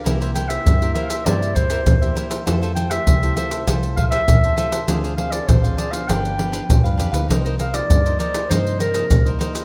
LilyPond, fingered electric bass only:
\new Staff \with { instrumentName = "Fingered electric bass" } { \clef bass \time 4/4 \key c \dorian \tempo 4 = 99 c,4 g,8 r8 g,4 e,8 r8 | f,4 c,8 r8 c,4 e,8 r8 | d,4 a,,8 r8 g,,4 b,,16 g,16 f,16 d,16 | c,4 g,8 r8 g,4 c,8 r8 | }